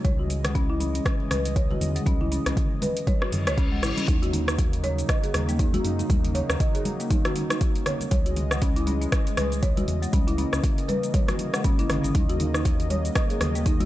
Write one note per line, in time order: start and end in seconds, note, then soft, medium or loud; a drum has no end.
0.04 1.00 C#2 loud
0.04 4.04 C#3 medium
0.04 4.04 E3 medium
0.04 4.04 G#3 medium
0.04 0.18 C#5 loud
0.04 4.04 D#5 medium
0.04 kick loud
0.04 closed hi-hat soft
0.04 high conga loud
0.04 shaker soft
0.19 0.29 F#4 medium
0.30 open hi-hat medium
0.30 muted conga medium
0.30 shaker medium
0.44 0.54 G#3 medium
0.44 cross-stick medium
0.44 closed hi-hat medium
0.44 mid tom medium
0.44 shaker medium
0.55 0.68 C#4 loud
0.55 kick loud
0.55 closed hi-hat soft
0.55 muted conga soft
0.55 shaker soft
0.70 0.79 E4 loud
0.80 0.93 C#4 medium
0.80 open hi-hat medium
0.80 muted conga soft
0.80 high conga medium
0.80 shaker medium
0.95 1.05 C#4 medium
0.95 closed hi-hat medium
0.95 shaker soft
1.06 kick loud
1.06 cross-stick medium
1.06 closed hi-hat soft
1.06 shaker soft
1.20 muted conga soft
1.31 1.76 C#2 medium
1.31 1.39 B4 loud
1.31 cross-stick medium
1.31 open hi-hat medium
1.31 mid tom medium
1.31 high conga medium
1.31 shaker medium
1.45 closed hi-hat medium
1.45 muted conga medium
1.45 shaker medium
1.56 1.70 C#5 loud
1.56 kick loud
1.56 closed hi-hat soft
1.56 shaker soft
1.70 1.81 F#4 medium
1.70 muted conga soft
1.70 high conga medium
1.70 low conga medium
1.81 1.99 E2 medium
1.81 open hi-hat medium
1.81 high conga medium
1.81 low conga loud
1.81 shaker medium
1.96 2.05 G#3 medium
1.96 closed hi-hat medium
1.96 muted conga medium
1.96 shaker medium
2.06 2.39 C#2 loud
2.06 2.19 C#4 loud
2.06 kick loud
2.06 closed hi-hat soft
2.06 high conga medium
2.06 shaker soft
2.21 2.30 E4 loud
2.21 low conga medium
2.32 2.45 C#4 medium
2.32 open hi-hat medium
2.32 muted conga medium
2.32 shaker medium
2.46 2.53 C#2 medium
2.46 2.56 C#4 medium
2.46 cross-stick medium
2.46 closed hi-hat medium
2.46 mid tom medium
2.46 low conga medium
2.46 shaker soft
2.57 kick loud
2.57 closed hi-hat soft
2.57 muted conga soft
2.57 shaker soft
2.82 2.90 B4 loud
2.82 open hi-hat medium
2.82 muted conga medium
2.82 high conga medium
2.82 low conga medium
2.82 shaker medium
2.97 closed hi-hat medium
2.97 shaker medium
3.07 3.21 C#5 loud
3.07 kick loud
3.07 closed hi-hat soft
3.07 reverse cymbal medium
3.07 high conga loud
3.07 shaker soft
3.22 3.32 F#4 medium
3.22 cross-stick medium
3.22 muted conga soft
3.32 3.48 F#2 loud
3.32 open hi-hat medium
3.32 high conga medium
3.32 low conga medium
3.32 shaker medium
3.47 3.84 C#2 medium
3.47 3.57 C#5 loud
3.47 cross-stick loud
3.47 closed hi-hat medium
3.47 mid tom medium
3.47 muted conga medium
3.47 shaker medium
3.57 3.71 C#4 loud
3.57 kick loud
3.57 closed hi-hat soft
3.57 shaker soft
3.72 3.82 G#3 medium
3.72 muted conga soft
3.83 3.93 G#1 loud
3.83 3.96 E4 medium
3.83 cross-stick medium
3.83 open hi-hat medium
3.83 shaker medium
3.97 4.07 C#4 medium
3.97 closed hi-hat medium
3.97 muted conga soft
3.97 high conga medium
3.97 shaker medium
4.08 5.03 D#2 loud
4.08 8.07 C#3 medium
4.08 8.07 F#3 medium
4.08 8.07 A#3 medium
4.08 4.21 D#4 loud
4.08 8.07 D#4 medium
4.08 kick loud
4.08 closed hi-hat medium
4.08 high conga loud
4.08 shaker medium
4.22 4.32 F#4 loud
4.22 closed hi-hat soft
4.22 shaker soft
4.33 4.46 D#4 medium
4.33 open hi-hat loud
4.33 muted conga medium
4.33 low conga medium
4.48 4.58 D#4 medium
4.48 cross-stick loud
4.48 shaker medium
4.58 kick loud
4.58 closed hi-hat medium
4.58 muted conga soft
4.58 shaker medium
4.73 closed hi-hat soft
4.73 shaker soft
4.84 4.91 C#5 loud
4.84 open hi-hat medium
4.84 muted conga medium
4.84 high conga medium
4.98 closed hi-hat soft
4.98 shaker medium
5.09 5.23 D#5 loud
5.09 kick loud
5.09 cross-stick medium
5.09 closed hi-hat medium
5.09 shaker medium
5.23 5.33 G#4 medium
5.23 closed hi-hat soft
5.23 muted conga soft
5.23 shaker soft
5.34 5.79 D#2 medium
5.34 cross-stick medium
5.34 open hi-hat medium
5.34 mid tom medium
5.34 high conga medium
5.49 5.58 A#3 medium
5.49 closed hi-hat soft
5.49 muted conga medium
5.49 shaker medium
5.59 5.72 D#4 loud
5.59 kick loud
5.59 closed hi-hat medium
5.59 shaker medium
5.74 5.83 F#4 loud
5.74 closed hi-hat soft
5.74 muted conga soft
5.74 high conga loud
5.74 shaker soft
5.84 6.03 F#2 medium
5.84 5.98 D#4 medium
5.84 open hi-hat medium
5.84 high conga medium
5.99 6.09 D#4 medium
5.99 closed hi-hat soft
5.99 muted conga medium
5.99 shaker medium
6.10 6.42 D#2 loud
6.10 kick loud
6.10 closed hi-hat medium
6.10 high conga loud
6.10 shaker medium
6.25 closed hi-hat soft
6.25 shaker soft
6.35 6.43 C#5 loud
6.35 open hi-hat medium
6.35 muted conga soft
6.49 6.57 D#2 medium
6.49 cross-stick loud
6.49 shaker medium
6.60 6.74 D#5 loud
6.60 kick loud
6.60 closed hi-hat medium
6.60 muted conga soft
6.60 shaker medium
6.75 6.85 G#4 medium
6.75 closed hi-hat soft
6.75 shaker soft
6.85 open hi-hat medium
6.85 muted conga medium
6.85 high conga loud
7.00 7.09 A#3 medium
7.00 closed hi-hat soft
7.00 shaker medium
7.10 7.24 D#4 loud
7.10 kick loud
7.10 closed hi-hat medium
7.10 high conga loud
7.10 shaker medium
7.25 7.35 F#4 loud
7.25 cross-stick medium
7.25 closed hi-hat soft
7.25 mid tom medium
7.25 muted conga soft
7.25 low conga loud
7.25 shaker soft
7.36 7.49 D#4 medium
7.36 open hi-hat medium
7.36 high conga medium
7.50 7.60 D#4 medium
7.50 cross-stick loud
7.50 closed hi-hat soft
7.50 muted conga medium
7.50 shaker medium
7.61 kick loud
7.61 closed hi-hat medium
7.61 shaker medium
7.76 closed hi-hat soft
7.76 muted conga soft
7.76 shaker soft
7.86 7.94 C#5 loud
7.86 cross-stick medium
7.86 open hi-hat medium
7.86 mid tom medium
7.86 low conga loud
8.00 closed hi-hat soft
8.00 muted conga medium
8.00 high conga medium
8.00 shaker medium
8.11 9.07 C#2 loud
8.11 13.85 C#3 medium
8.11 12.11 E3 medium
8.11 10.11 G#3 medium
8.11 8.25 C#5 loud
8.11 13.85 D#5 medium
8.11 kick loud
8.11 closed hi-hat medium
8.11 high conga loud
8.11 shaker medium
8.26 8.36 F#4 medium
8.26 closed hi-hat soft
8.26 shaker soft
8.36 open hi-hat medium
8.36 muted conga medium
8.36 low conga medium
8.51 8.61 G#3 medium
8.51 cross-stick loud
8.51 shaker medium
8.61 8.75 C#4 loud
8.61 kick loud
8.61 closed hi-hat medium
8.61 muted conga soft
8.61 shaker medium
8.76 8.86 E4 loud
8.76 closed hi-hat soft
8.76 shaker soft
8.87 9.00 C#4 medium
8.87 open hi-hat medium
8.87 muted conga medium
8.87 high conga medium
9.02 9.12 C#4 medium
9.02 closed hi-hat soft
9.02 shaker medium
9.12 kick loud
9.12 cross-stick loud
9.12 closed hi-hat medium
9.12 shaker medium
9.27 closed hi-hat soft
9.27 muted conga soft
9.27 shaker soft
9.37 9.82 C#2 medium
9.37 9.45 B4 loud
9.37 cross-stick loud
9.37 open hi-hat medium
9.37 mid tom medium
9.37 high conga medium
9.52 closed hi-hat soft
9.52 muted conga medium
9.52 shaker medium
9.63 9.76 C#5 loud
9.63 kick loud
9.63 closed hi-hat medium
9.63 shaker medium
9.77 9.87 F#4 medium
9.77 closed hi-hat soft
9.77 muted conga soft
9.77 high conga loud
9.77 shaker soft
9.88 10.06 E2 medium
9.88 open hi-hat medium
9.88 high conga medium
10.02 10.12 G#3 medium
10.02 closed hi-hat soft
10.02 muted conga medium
10.02 shaker medium
10.13 10.45 C#2 loud
10.13 13.85 A#3 medium
10.13 10.26 C#4 loud
10.13 kick loud
10.13 closed hi-hat medium
10.13 high conga loud
10.13 shaker medium
10.27 10.37 E4 loud
10.27 closed hi-hat soft
10.27 shaker soft
10.38 10.51 C#4 medium
10.38 open hi-hat medium
10.38 muted conga soft
10.53 10.60 C#2 loud
10.53 10.63 C#4 medium
10.53 cross-stick medium
10.53 shaker medium
10.64 kick loud
10.64 closed hi-hat medium
10.64 muted conga soft
10.64 shaker medium
10.78 closed hi-hat soft
10.78 shaker soft
10.88 10.96 B4 loud
10.88 open hi-hat medium
10.88 muted conga soft
10.88 high conga loud
11.03 closed hi-hat soft
11.03 shaker medium
11.14 11.28 C#5 loud
11.14 kick loud
11.14 closed hi-hat medium
11.14 high conga loud
11.14 shaker medium
11.28 11.39 F#4 medium
11.28 cross-stick medium
11.28 closed hi-hat soft
11.28 mid tom medium
11.28 muted conga soft
11.28 low conga loud
11.28 shaker soft
11.39 open hi-hat medium
11.39 high conga medium
11.53 11.63 G#3 medium
11.53 cross-stick medium
11.53 closed hi-hat soft
11.53 muted conga soft
11.53 shaker medium
11.64 11.83 G#1 loud
11.64 11.77 C#4 loud
11.64 kick loud
11.64 closed hi-hat medium
11.64 shaker medium
11.79 11.88 E4 loud
11.79 closed hi-hat soft
11.79 muted conga soft
11.79 shaker soft
11.89 11.99 G#1 loud
11.89 12.03 C#4 medium
11.89 cross-stick medium
11.89 open hi-hat medium
11.89 mid tom medium
11.89 low conga loud
12.04 12.11 G#1 medium
12.04 12.14 C#4 medium
12.04 closed hi-hat soft
12.04 muted conga soft
12.04 high conga medium
12.04 shaker medium
12.15 13.10 D#2 loud
12.15 13.85 F#3 medium
12.15 12.28 D#4 loud
12.15 kick loud
12.15 closed hi-hat medium
12.15 high conga loud
12.15 shaker medium
12.29 12.39 F#4 loud
12.29 closed hi-hat soft
12.29 shaker soft
12.40 12.53 D#4 medium
12.40 open hi-hat medium
12.40 muted conga soft
12.40 low conga medium
12.54 12.65 D#4 medium
12.54 cross-stick medium
12.54 shaker medium
12.65 kick loud
12.65 closed hi-hat medium
12.65 muted conga soft
12.65 shaker medium
12.80 closed hi-hat soft
12.80 shaker soft
12.90 12.98 C#5 loud
12.90 open hi-hat medium
12.90 muted conga soft
12.90 high conga medium
13.05 closed hi-hat soft
13.05 shaker medium
13.15 13.29 D#5 medium
13.15 kick loud
13.15 cross-stick medium
13.15 closed hi-hat medium
13.15 shaker medium
13.30 13.40 G#4 medium
13.30 closed hi-hat soft
13.30 muted conga soft
13.30 shaker soft
13.40 13.85 D#2 medium
13.40 cross-stick medium
13.40 open hi-hat medium
13.40 mid tom medium
13.40 high conga medium
13.55 13.65 A#3 medium
13.55 closed hi-hat soft
13.55 muted conga medium
13.55 shaker medium
13.66 13.79 D#4 loud
13.66 kick loud
13.66 closed hi-hat medium
13.66 shaker medium
13.80 13.85 F#4 loud
13.80 closed hi-hat soft
13.80 muted conga soft
13.80 high conga loud
13.80 shaker soft